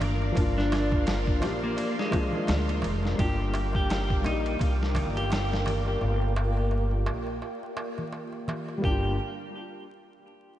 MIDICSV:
0, 0, Header, 1, 7, 480
1, 0, Start_track
1, 0, Tempo, 705882
1, 248, Time_signature, 4, 2, 24, 8
1, 7201, End_track
2, 0, Start_track
2, 0, Title_t, "String machine"
2, 0, Program_c, 0, 50
2, 0, Note_on_c, 0, 70, 88
2, 0, Note_on_c, 0, 74, 75
2, 0, Note_on_c, 0, 77, 83
2, 0, Note_on_c, 0, 86, 102
2, 228, Note_off_c, 0, 86, 0
2, 245, Note_on_c, 0, 84, 99
2, 2139, Note_off_c, 0, 77, 0
2, 2141, Note_off_c, 0, 70, 0
2, 2141, Note_off_c, 0, 74, 0
2, 2147, Note_off_c, 0, 84, 0
2, 2165, Note_on_c, 0, 79, 76
2, 2166, Note_on_c, 0, 77, 76
2, 2167, Note_on_c, 0, 86, 96
2, 2168, Note_on_c, 0, 70, 88
2, 5980, Note_off_c, 0, 77, 0
2, 5980, Note_off_c, 0, 79, 0
2, 5980, Note_off_c, 0, 86, 0
2, 5981, Note_off_c, 0, 70, 0
2, 6005, Note_on_c, 0, 77, 68
2, 6006, Note_on_c, 0, 62, 76
2, 6006, Note_on_c, 0, 70, 66
2, 6009, Note_on_c, 0, 79, 83
2, 6230, Note_off_c, 0, 62, 0
2, 6230, Note_off_c, 0, 70, 0
2, 6230, Note_off_c, 0, 77, 0
2, 6232, Note_off_c, 0, 79, 0
2, 7201, End_track
3, 0, Start_track
3, 0, Title_t, "Clean electric guitar"
3, 0, Program_c, 1, 27
3, 393, Note_on_c, 1, 62, 96
3, 701, Note_off_c, 1, 62, 0
3, 1112, Note_on_c, 1, 58, 92
3, 1322, Note_off_c, 1, 58, 0
3, 1354, Note_on_c, 1, 56, 97
3, 2091, Note_off_c, 1, 56, 0
3, 2175, Note_on_c, 1, 67, 90
3, 2509, Note_off_c, 1, 67, 0
3, 2556, Note_on_c, 1, 67, 87
3, 2862, Note_off_c, 1, 67, 0
3, 2895, Note_on_c, 1, 63, 89
3, 3111, Note_off_c, 1, 63, 0
3, 3516, Note_on_c, 1, 67, 87
3, 3822, Note_off_c, 1, 67, 0
3, 6017, Note_on_c, 1, 67, 87
3, 6198, Note_off_c, 1, 67, 0
3, 7201, End_track
4, 0, Start_track
4, 0, Title_t, "Felt piano"
4, 0, Program_c, 2, 0
4, 0, Control_c, 2, 64, 127
4, 0, Note_on_c, 2, 53, 83
4, 0, Note_on_c, 2, 58, 72
4, 0, Note_on_c, 2, 62, 76
4, 0, Note_on_c, 2, 67, 89
4, 207, Note_off_c, 2, 53, 0
4, 218, Note_off_c, 2, 58, 0
4, 218, Note_on_c, 2, 53, 94
4, 227, Note_off_c, 2, 62, 0
4, 236, Note_on_c, 2, 58, 85
4, 237, Note_off_c, 2, 67, 0
4, 255, Note_on_c, 2, 62, 87
4, 274, Note_on_c, 2, 65, 107
4, 928, Note_off_c, 2, 53, 0
4, 937, Note_off_c, 2, 58, 0
4, 947, Note_off_c, 2, 62, 0
4, 953, Note_on_c, 2, 53, 84
4, 957, Note_off_c, 2, 65, 0
4, 964, Note_on_c, 2, 58, 79
4, 972, Note_on_c, 2, 62, 73
4, 981, Note_on_c, 2, 67, 91
4, 1420, Note_off_c, 2, 53, 0
4, 1426, Note_off_c, 2, 58, 0
4, 1430, Note_off_c, 2, 62, 0
4, 1434, Note_off_c, 2, 67, 0
4, 1434, Note_on_c, 2, 53, 96
4, 1441, Note_on_c, 2, 58, 88
4, 1451, Note_on_c, 2, 62, 89
4, 1460, Note_on_c, 2, 65, 105
4, 1546, Note_off_c, 2, 53, 0
4, 1556, Note_on_c, 2, 53, 72
4, 1562, Note_off_c, 2, 58, 0
4, 1568, Note_off_c, 2, 62, 0
4, 1572, Note_off_c, 2, 65, 0
4, 1574, Note_on_c, 2, 58, 70
4, 1594, Note_on_c, 2, 62, 62
4, 1613, Note_on_c, 2, 65, 80
4, 2128, Note_off_c, 2, 53, 0
4, 2137, Note_off_c, 2, 58, 0
4, 2143, Note_on_c, 2, 55, 89
4, 2147, Note_off_c, 2, 62, 0
4, 2157, Note_off_c, 2, 65, 0
4, 2163, Note_on_c, 2, 58, 79
4, 2176, Control_c, 2, 64, 0
4, 2182, Note_on_c, 2, 62, 78
4, 2201, Note_on_c, 2, 65, 90
4, 2296, Control_c, 2, 64, 127
4, 2851, Note_off_c, 2, 55, 0
4, 2861, Note_off_c, 2, 58, 0
4, 2864, Note_on_c, 2, 55, 79
4, 2871, Note_off_c, 2, 62, 0
4, 2880, Note_off_c, 2, 65, 0
4, 2883, Note_on_c, 2, 58, 70
4, 2900, Note_on_c, 2, 74, 73
4, 2921, Note_on_c, 2, 67, 86
4, 4052, Note_off_c, 2, 55, 0
4, 4061, Note_off_c, 2, 58, 0
4, 4070, Note_off_c, 2, 74, 0
4, 4080, Note_off_c, 2, 67, 0
4, 4097, Control_c, 2, 64, 0
4, 5968, Note_on_c, 2, 55, 89
4, 5996, Note_on_c, 2, 58, 82
4, 6025, Note_on_c, 2, 62, 74
4, 6054, Note_on_c, 2, 65, 90
4, 6172, Note_off_c, 2, 55, 0
4, 6187, Note_off_c, 2, 58, 0
4, 6203, Note_off_c, 2, 62, 0
4, 6218, Note_off_c, 2, 65, 0
4, 7201, End_track
5, 0, Start_track
5, 0, Title_t, "Upright bass"
5, 0, Program_c, 3, 32
5, 0, Note_on_c, 3, 31, 95
5, 227, Note_off_c, 3, 31, 0
5, 250, Note_on_c, 3, 31, 101
5, 950, Note_off_c, 3, 31, 0
5, 966, Note_on_c, 3, 34, 87
5, 1183, Note_off_c, 3, 34, 0
5, 1690, Note_on_c, 3, 38, 102
5, 1904, Note_off_c, 3, 38, 0
5, 1927, Note_on_c, 3, 29, 84
5, 2143, Note_off_c, 3, 29, 0
5, 2170, Note_on_c, 3, 31, 91
5, 2870, Note_off_c, 3, 31, 0
5, 2893, Note_on_c, 3, 34, 77
5, 3106, Note_off_c, 3, 34, 0
5, 3133, Note_on_c, 3, 36, 89
5, 3371, Note_on_c, 3, 31, 94
5, 3381, Note_off_c, 3, 36, 0
5, 4070, Note_off_c, 3, 31, 0
5, 4090, Note_on_c, 3, 31, 103
5, 4789, Note_off_c, 3, 31, 0
5, 4811, Note_on_c, 3, 34, 81
5, 5025, Note_off_c, 3, 34, 0
5, 6012, Note_on_c, 3, 31, 93
5, 6233, Note_off_c, 3, 31, 0
5, 7201, End_track
6, 0, Start_track
6, 0, Title_t, "Darbuka"
6, 4, Note_on_c, 9, 64, 76
6, 7, Note_on_c, 9, 63, 85
6, 72, Note_off_c, 9, 64, 0
6, 75, Note_off_c, 9, 63, 0
6, 149, Note_on_c, 9, 63, 41
6, 217, Note_off_c, 9, 63, 0
6, 241, Note_on_c, 9, 63, 51
6, 309, Note_off_c, 9, 63, 0
6, 389, Note_on_c, 9, 63, 28
6, 457, Note_off_c, 9, 63, 0
6, 490, Note_on_c, 9, 63, 97
6, 558, Note_off_c, 9, 63, 0
6, 622, Note_on_c, 9, 63, 35
6, 690, Note_off_c, 9, 63, 0
6, 723, Note_on_c, 9, 63, 48
6, 791, Note_off_c, 9, 63, 0
6, 860, Note_on_c, 9, 63, 24
6, 928, Note_off_c, 9, 63, 0
6, 965, Note_on_c, 9, 63, 90
6, 1033, Note_off_c, 9, 63, 0
6, 1099, Note_on_c, 9, 63, 35
6, 1167, Note_off_c, 9, 63, 0
6, 1204, Note_on_c, 9, 63, 56
6, 1272, Note_off_c, 9, 63, 0
6, 1339, Note_on_c, 9, 63, 26
6, 1407, Note_off_c, 9, 63, 0
6, 1443, Note_on_c, 9, 63, 89
6, 1511, Note_off_c, 9, 63, 0
6, 1579, Note_on_c, 9, 64, 60
6, 1585, Note_on_c, 9, 63, 34
6, 1647, Note_off_c, 9, 64, 0
6, 1653, Note_off_c, 9, 63, 0
6, 1682, Note_on_c, 9, 63, 59
6, 1750, Note_off_c, 9, 63, 0
6, 1823, Note_on_c, 9, 63, 29
6, 1891, Note_off_c, 9, 63, 0
6, 1917, Note_on_c, 9, 63, 81
6, 1919, Note_on_c, 9, 64, 81
6, 1985, Note_off_c, 9, 63, 0
6, 1987, Note_off_c, 9, 64, 0
6, 2060, Note_on_c, 9, 63, 37
6, 2128, Note_off_c, 9, 63, 0
6, 2169, Note_on_c, 9, 63, 50
6, 2237, Note_off_c, 9, 63, 0
6, 2303, Note_on_c, 9, 63, 26
6, 2371, Note_off_c, 9, 63, 0
6, 2405, Note_on_c, 9, 63, 95
6, 2473, Note_off_c, 9, 63, 0
6, 2537, Note_on_c, 9, 63, 41
6, 2605, Note_off_c, 9, 63, 0
6, 2650, Note_on_c, 9, 63, 46
6, 2718, Note_off_c, 9, 63, 0
6, 2789, Note_on_c, 9, 63, 23
6, 2857, Note_off_c, 9, 63, 0
6, 2886, Note_on_c, 9, 63, 79
6, 2954, Note_off_c, 9, 63, 0
6, 3029, Note_on_c, 9, 63, 32
6, 3097, Note_off_c, 9, 63, 0
6, 3124, Note_on_c, 9, 63, 52
6, 3192, Note_off_c, 9, 63, 0
6, 3264, Note_on_c, 9, 63, 26
6, 3332, Note_off_c, 9, 63, 0
6, 3364, Note_on_c, 9, 64, 80
6, 3365, Note_on_c, 9, 63, 98
6, 3432, Note_off_c, 9, 64, 0
6, 3433, Note_off_c, 9, 63, 0
6, 3505, Note_on_c, 9, 63, 34
6, 3573, Note_off_c, 9, 63, 0
6, 3607, Note_on_c, 9, 63, 54
6, 3675, Note_off_c, 9, 63, 0
6, 3744, Note_on_c, 9, 63, 25
6, 3812, Note_off_c, 9, 63, 0
6, 3848, Note_on_c, 9, 63, 88
6, 3849, Note_on_c, 9, 64, 77
6, 3916, Note_off_c, 9, 63, 0
6, 3917, Note_off_c, 9, 64, 0
6, 3984, Note_on_c, 9, 63, 36
6, 4052, Note_off_c, 9, 63, 0
6, 4088, Note_on_c, 9, 63, 44
6, 4156, Note_off_c, 9, 63, 0
6, 4227, Note_on_c, 9, 63, 28
6, 4295, Note_off_c, 9, 63, 0
6, 4327, Note_on_c, 9, 63, 95
6, 4395, Note_off_c, 9, 63, 0
6, 4469, Note_on_c, 9, 63, 39
6, 4537, Note_off_c, 9, 63, 0
6, 4564, Note_on_c, 9, 63, 46
6, 4632, Note_off_c, 9, 63, 0
6, 4701, Note_on_c, 9, 63, 25
6, 4769, Note_off_c, 9, 63, 0
6, 4804, Note_on_c, 9, 63, 98
6, 4872, Note_off_c, 9, 63, 0
6, 4941, Note_on_c, 9, 63, 37
6, 5009, Note_off_c, 9, 63, 0
6, 5046, Note_on_c, 9, 63, 54
6, 5114, Note_off_c, 9, 63, 0
6, 5189, Note_on_c, 9, 63, 27
6, 5257, Note_off_c, 9, 63, 0
6, 5281, Note_on_c, 9, 63, 97
6, 5349, Note_off_c, 9, 63, 0
6, 5425, Note_on_c, 9, 63, 38
6, 5429, Note_on_c, 9, 64, 55
6, 5493, Note_off_c, 9, 63, 0
6, 5497, Note_off_c, 9, 64, 0
6, 5525, Note_on_c, 9, 63, 59
6, 5593, Note_off_c, 9, 63, 0
6, 5662, Note_on_c, 9, 63, 28
6, 5730, Note_off_c, 9, 63, 0
6, 5766, Note_on_c, 9, 64, 81
6, 5771, Note_on_c, 9, 63, 93
6, 5834, Note_off_c, 9, 64, 0
6, 5839, Note_off_c, 9, 63, 0
6, 5906, Note_on_c, 9, 63, 39
6, 5974, Note_off_c, 9, 63, 0
6, 7201, End_track
7, 0, Start_track
7, 0, Title_t, "Drums"
7, 11, Note_on_c, 9, 51, 70
7, 79, Note_off_c, 9, 51, 0
7, 248, Note_on_c, 9, 36, 115
7, 251, Note_on_c, 9, 51, 98
7, 316, Note_off_c, 9, 36, 0
7, 319, Note_off_c, 9, 51, 0
7, 398, Note_on_c, 9, 38, 37
7, 466, Note_off_c, 9, 38, 0
7, 490, Note_on_c, 9, 51, 71
7, 496, Note_on_c, 9, 38, 57
7, 558, Note_off_c, 9, 51, 0
7, 564, Note_off_c, 9, 38, 0
7, 626, Note_on_c, 9, 36, 96
7, 694, Note_off_c, 9, 36, 0
7, 726, Note_on_c, 9, 51, 91
7, 732, Note_on_c, 9, 38, 117
7, 794, Note_off_c, 9, 51, 0
7, 800, Note_off_c, 9, 38, 0
7, 866, Note_on_c, 9, 36, 93
7, 934, Note_off_c, 9, 36, 0
7, 970, Note_on_c, 9, 51, 69
7, 976, Note_on_c, 9, 38, 46
7, 1038, Note_off_c, 9, 51, 0
7, 1044, Note_off_c, 9, 38, 0
7, 1209, Note_on_c, 9, 51, 94
7, 1277, Note_off_c, 9, 51, 0
7, 1356, Note_on_c, 9, 38, 52
7, 1424, Note_off_c, 9, 38, 0
7, 1449, Note_on_c, 9, 36, 99
7, 1451, Note_on_c, 9, 51, 73
7, 1517, Note_off_c, 9, 36, 0
7, 1519, Note_off_c, 9, 51, 0
7, 1688, Note_on_c, 9, 51, 86
7, 1694, Note_on_c, 9, 38, 112
7, 1756, Note_off_c, 9, 51, 0
7, 1762, Note_off_c, 9, 38, 0
7, 1830, Note_on_c, 9, 51, 44
7, 1898, Note_off_c, 9, 51, 0
7, 1933, Note_on_c, 9, 51, 69
7, 2001, Note_off_c, 9, 51, 0
7, 2077, Note_on_c, 9, 38, 38
7, 2145, Note_off_c, 9, 38, 0
7, 2170, Note_on_c, 9, 36, 107
7, 2170, Note_on_c, 9, 51, 84
7, 2238, Note_off_c, 9, 36, 0
7, 2238, Note_off_c, 9, 51, 0
7, 2413, Note_on_c, 9, 51, 66
7, 2481, Note_off_c, 9, 51, 0
7, 2549, Note_on_c, 9, 36, 90
7, 2617, Note_off_c, 9, 36, 0
7, 2654, Note_on_c, 9, 51, 86
7, 2660, Note_on_c, 9, 38, 113
7, 2722, Note_off_c, 9, 51, 0
7, 2728, Note_off_c, 9, 38, 0
7, 2790, Note_on_c, 9, 36, 89
7, 2858, Note_off_c, 9, 36, 0
7, 2896, Note_on_c, 9, 51, 63
7, 2964, Note_off_c, 9, 51, 0
7, 3032, Note_on_c, 9, 51, 43
7, 3100, Note_off_c, 9, 51, 0
7, 3133, Note_on_c, 9, 36, 113
7, 3135, Note_on_c, 9, 51, 91
7, 3201, Note_off_c, 9, 36, 0
7, 3203, Note_off_c, 9, 51, 0
7, 3283, Note_on_c, 9, 38, 50
7, 3351, Note_off_c, 9, 38, 0
7, 3375, Note_on_c, 9, 51, 68
7, 3443, Note_off_c, 9, 51, 0
7, 3516, Note_on_c, 9, 51, 45
7, 3584, Note_off_c, 9, 51, 0
7, 3616, Note_on_c, 9, 51, 88
7, 3622, Note_on_c, 9, 38, 119
7, 3684, Note_off_c, 9, 51, 0
7, 3690, Note_off_c, 9, 38, 0
7, 3763, Note_on_c, 9, 38, 54
7, 3831, Note_off_c, 9, 38, 0
7, 3860, Note_on_c, 9, 51, 68
7, 3928, Note_off_c, 9, 51, 0
7, 6010, Note_on_c, 9, 36, 110
7, 6078, Note_off_c, 9, 36, 0
7, 7201, End_track
0, 0, End_of_file